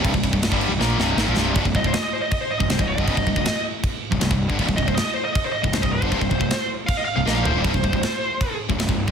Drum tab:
CC |x-x-x-x---------|x---x---x---x---|x---x---x---x---|x---x---x---x---|
SD |----o---o-o-o-o-|----o-------o---|----o-------o---|----o-------o---|
FT |----------------|----------------|----------------|----------------|
BD |oooo-o----------|oooo----o--o-o-o|oooo----o--o-o-o|oooo----o--o-o-o|

CC |x---x---x-------|x---x---x---x---|
SD |----o-------o---|----o-------o---|
FT |--------------o-|----------------|
BD |oooo----o-------|oooo----o--o-o-o|